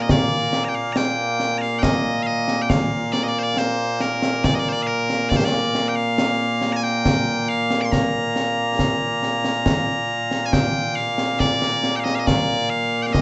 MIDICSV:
0, 0, Header, 1, 3, 480
1, 0, Start_track
1, 0, Key_signature, -2, "major"
1, 0, Tempo, 869565
1, 54, Time_signature, 3, 2, 24, 8
1, 7295, End_track
2, 0, Start_track
2, 0, Title_t, "Bagpipes"
2, 0, Program_c, 0, 109
2, 0, Note_on_c, 0, 46, 89
2, 0, Note_on_c, 0, 58, 89
2, 10, Note_on_c, 0, 75, 73
2, 58, Note_off_c, 0, 75, 0
2, 58, Note_on_c, 0, 74, 87
2, 356, Note_off_c, 0, 74, 0
2, 356, Note_on_c, 0, 82, 66
2, 378, Note_off_c, 0, 82, 0
2, 378, Note_on_c, 0, 79, 66
2, 413, Note_off_c, 0, 79, 0
2, 413, Note_on_c, 0, 77, 84
2, 511, Note_off_c, 0, 77, 0
2, 511, Note_on_c, 0, 82, 84
2, 534, Note_off_c, 0, 82, 0
2, 534, Note_on_c, 0, 79, 84
2, 872, Note_off_c, 0, 79, 0
2, 872, Note_on_c, 0, 82, 87
2, 890, Note_off_c, 0, 82, 0
2, 890, Note_on_c, 0, 77, 87
2, 987, Note_off_c, 0, 77, 0
2, 987, Note_on_c, 0, 79, 89
2, 1009, Note_off_c, 0, 79, 0
2, 1009, Note_on_c, 0, 75, 89
2, 1230, Note_off_c, 0, 75, 0
2, 1230, Note_on_c, 0, 77, 92
2, 1251, Note_off_c, 0, 77, 0
2, 1251, Note_on_c, 0, 75, 92
2, 1446, Note_off_c, 0, 75, 0
2, 1446, Note_on_c, 0, 79, 75
2, 1488, Note_off_c, 0, 79, 0
2, 1488, Note_on_c, 0, 77, 99
2, 1725, Note_off_c, 0, 77, 0
2, 1725, Note_on_c, 0, 74, 82
2, 1784, Note_off_c, 0, 74, 0
2, 1784, Note_on_c, 0, 75, 65
2, 1811, Note_off_c, 0, 75, 0
2, 1811, Note_on_c, 0, 74, 90
2, 1869, Note_off_c, 0, 74, 0
2, 1869, Note_on_c, 0, 72, 61
2, 1893, Note_off_c, 0, 72, 0
2, 1893, Note_on_c, 0, 74, 92
2, 1976, Note_off_c, 0, 74, 0
2, 1976, Note_on_c, 0, 72, 84
2, 2215, Note_off_c, 0, 72, 0
2, 2215, Note_on_c, 0, 70, 81
2, 2454, Note_off_c, 0, 70, 0
2, 2454, Note_on_c, 0, 74, 99
2, 2510, Note_off_c, 0, 74, 0
2, 2510, Note_on_c, 0, 75, 60
2, 2534, Note_off_c, 0, 75, 0
2, 2534, Note_on_c, 0, 74, 87
2, 2588, Note_off_c, 0, 74, 0
2, 2588, Note_on_c, 0, 72, 68
2, 2607, Note_off_c, 0, 72, 0
2, 2607, Note_on_c, 0, 74, 94
2, 2664, Note_off_c, 0, 74, 0
2, 2664, Note_on_c, 0, 77, 100
2, 2688, Note_off_c, 0, 77, 0
2, 2688, Note_on_c, 0, 70, 100
2, 2923, Note_off_c, 0, 70, 0
2, 2923, Note_on_c, 0, 74, 92
2, 2960, Note_off_c, 0, 74, 0
2, 2960, Note_on_c, 0, 72, 81
2, 3007, Note_off_c, 0, 72, 0
2, 3007, Note_on_c, 0, 74, 91
2, 3248, Note_off_c, 0, 74, 0
2, 3248, Note_on_c, 0, 79, 77
2, 3288, Note_off_c, 0, 79, 0
2, 3288, Note_on_c, 0, 77, 106
2, 3712, Note_off_c, 0, 77, 0
2, 3712, Note_on_c, 0, 82, 88
2, 3733, Note_off_c, 0, 82, 0
2, 3733, Note_on_c, 0, 80, 88
2, 3770, Note_off_c, 0, 80, 0
2, 3770, Note_on_c, 0, 79, 116
2, 4133, Note_off_c, 0, 79, 0
2, 4133, Note_on_c, 0, 77, 104
2, 4313, Note_off_c, 0, 77, 0
2, 4313, Note_on_c, 0, 86, 80
2, 4332, Note_off_c, 0, 86, 0
2, 4332, Note_on_c, 0, 84, 80
2, 4371, Note_off_c, 0, 84, 0
2, 4371, Note_on_c, 0, 82, 98
2, 5773, Note_off_c, 0, 82, 0
2, 5773, Note_on_c, 0, 80, 88
2, 5809, Note_off_c, 0, 80, 0
2, 5809, Note_on_c, 0, 79, 113
2, 6047, Note_off_c, 0, 79, 0
2, 6047, Note_on_c, 0, 77, 103
2, 6290, Note_off_c, 0, 77, 0
2, 6290, Note_on_c, 0, 74, 101
2, 6602, Note_off_c, 0, 74, 0
2, 6602, Note_on_c, 0, 79, 72
2, 6622, Note_off_c, 0, 79, 0
2, 6622, Note_on_c, 0, 77, 72
2, 6647, Note_off_c, 0, 77, 0
2, 6647, Note_on_c, 0, 75, 104
2, 6709, Note_off_c, 0, 75, 0
2, 6709, Note_on_c, 0, 77, 76
2, 6731, Note_off_c, 0, 77, 0
2, 6731, Note_on_c, 0, 75, 76
2, 6771, Note_off_c, 0, 75, 0
2, 6771, Note_on_c, 0, 74, 97
2, 7009, Note_off_c, 0, 74, 0
2, 7009, Note_on_c, 0, 77, 104
2, 7189, Note_off_c, 0, 77, 0
2, 7189, Note_on_c, 0, 79, 77
2, 7211, Note_off_c, 0, 79, 0
2, 7211, Note_on_c, 0, 77, 77
2, 7248, Note_off_c, 0, 77, 0
2, 7248, Note_on_c, 0, 75, 85
2, 7295, Note_off_c, 0, 46, 0
2, 7295, Note_off_c, 0, 58, 0
2, 7295, Note_off_c, 0, 75, 0
2, 7295, End_track
3, 0, Start_track
3, 0, Title_t, "Drums"
3, 51, Note_on_c, 9, 35, 74
3, 51, Note_on_c, 9, 38, 111
3, 107, Note_off_c, 9, 35, 0
3, 107, Note_off_c, 9, 38, 0
3, 292, Note_on_c, 9, 38, 79
3, 347, Note_off_c, 9, 38, 0
3, 528, Note_on_c, 9, 38, 97
3, 584, Note_off_c, 9, 38, 0
3, 771, Note_on_c, 9, 38, 62
3, 826, Note_off_c, 9, 38, 0
3, 893, Note_on_c, 9, 38, 30
3, 948, Note_off_c, 9, 38, 0
3, 1010, Note_on_c, 9, 35, 64
3, 1010, Note_on_c, 9, 38, 120
3, 1065, Note_off_c, 9, 35, 0
3, 1065, Note_off_c, 9, 38, 0
3, 1368, Note_on_c, 9, 38, 75
3, 1424, Note_off_c, 9, 38, 0
3, 1489, Note_on_c, 9, 35, 62
3, 1489, Note_on_c, 9, 38, 102
3, 1544, Note_off_c, 9, 35, 0
3, 1544, Note_off_c, 9, 38, 0
3, 1730, Note_on_c, 9, 38, 83
3, 1785, Note_off_c, 9, 38, 0
3, 1970, Note_on_c, 9, 38, 87
3, 2025, Note_off_c, 9, 38, 0
3, 2210, Note_on_c, 9, 38, 76
3, 2265, Note_off_c, 9, 38, 0
3, 2332, Note_on_c, 9, 38, 89
3, 2387, Note_off_c, 9, 38, 0
3, 2452, Note_on_c, 9, 35, 62
3, 2452, Note_on_c, 9, 38, 97
3, 2507, Note_off_c, 9, 35, 0
3, 2507, Note_off_c, 9, 38, 0
3, 2814, Note_on_c, 9, 38, 69
3, 2869, Note_off_c, 9, 38, 0
3, 2933, Note_on_c, 9, 35, 61
3, 2933, Note_on_c, 9, 38, 107
3, 2988, Note_off_c, 9, 35, 0
3, 2988, Note_off_c, 9, 38, 0
3, 3173, Note_on_c, 9, 38, 81
3, 3228, Note_off_c, 9, 38, 0
3, 3413, Note_on_c, 9, 38, 98
3, 3468, Note_off_c, 9, 38, 0
3, 3651, Note_on_c, 9, 38, 72
3, 3706, Note_off_c, 9, 38, 0
3, 3773, Note_on_c, 9, 38, 31
3, 3828, Note_off_c, 9, 38, 0
3, 3894, Note_on_c, 9, 35, 62
3, 3894, Note_on_c, 9, 38, 96
3, 3949, Note_off_c, 9, 35, 0
3, 3949, Note_off_c, 9, 38, 0
3, 4253, Note_on_c, 9, 38, 75
3, 4308, Note_off_c, 9, 38, 0
3, 4374, Note_on_c, 9, 35, 57
3, 4374, Note_on_c, 9, 38, 85
3, 4429, Note_off_c, 9, 35, 0
3, 4429, Note_off_c, 9, 38, 0
3, 4614, Note_on_c, 9, 38, 73
3, 4670, Note_off_c, 9, 38, 0
3, 4852, Note_on_c, 9, 35, 50
3, 4852, Note_on_c, 9, 38, 92
3, 4907, Note_off_c, 9, 35, 0
3, 4907, Note_off_c, 9, 38, 0
3, 5094, Note_on_c, 9, 38, 61
3, 5149, Note_off_c, 9, 38, 0
3, 5214, Note_on_c, 9, 38, 75
3, 5269, Note_off_c, 9, 38, 0
3, 5332, Note_on_c, 9, 35, 59
3, 5332, Note_on_c, 9, 38, 102
3, 5387, Note_off_c, 9, 35, 0
3, 5387, Note_off_c, 9, 38, 0
3, 5693, Note_on_c, 9, 38, 72
3, 5748, Note_off_c, 9, 38, 0
3, 5813, Note_on_c, 9, 35, 69
3, 5813, Note_on_c, 9, 38, 109
3, 5868, Note_off_c, 9, 35, 0
3, 5868, Note_off_c, 9, 38, 0
3, 6055, Note_on_c, 9, 38, 28
3, 6110, Note_off_c, 9, 38, 0
3, 6171, Note_on_c, 9, 38, 78
3, 6227, Note_off_c, 9, 38, 0
3, 6293, Note_on_c, 9, 35, 55
3, 6293, Note_on_c, 9, 38, 91
3, 6348, Note_off_c, 9, 35, 0
3, 6348, Note_off_c, 9, 38, 0
3, 6414, Note_on_c, 9, 38, 80
3, 6469, Note_off_c, 9, 38, 0
3, 6533, Note_on_c, 9, 38, 72
3, 6589, Note_off_c, 9, 38, 0
3, 6655, Note_on_c, 9, 38, 81
3, 6710, Note_off_c, 9, 38, 0
3, 6775, Note_on_c, 9, 35, 67
3, 6775, Note_on_c, 9, 38, 99
3, 6830, Note_off_c, 9, 35, 0
3, 6830, Note_off_c, 9, 38, 0
3, 7256, Note_on_c, 9, 35, 65
3, 7256, Note_on_c, 9, 38, 97
3, 7295, Note_off_c, 9, 35, 0
3, 7295, Note_off_c, 9, 38, 0
3, 7295, End_track
0, 0, End_of_file